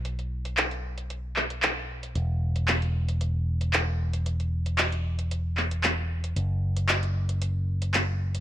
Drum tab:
HH |xx-xxx-xx--xx--x|x--xxx-xx--xx--x|xx-xxx-xx--xx--x|x--xxx-xx--xx--x|
CP |----x-----x-x---|----x-------x---|----x-----x-x---|----x-------x---|